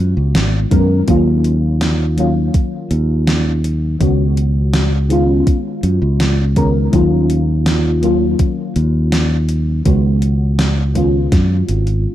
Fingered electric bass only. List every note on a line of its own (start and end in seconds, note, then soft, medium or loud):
0.00 0.13 F#2 medium
0.17 0.34 C#2 medium
0.35 0.65 G#1 medium
0.71 1.01 F#2 medium
1.08 2.49 D#2 loud
2.91 3.95 D#2 medium
4.01 5.42 C#2 loud
5.83 5.98 F#2 medium
6.02 6.88 C#2 medium
6.93 8.34 D#2 loud
8.76 9.81 D#2 medium
9.86 11.27 C#2 loud
11.32 11.62 F#2 loud
11.69 12.05 G#1 loud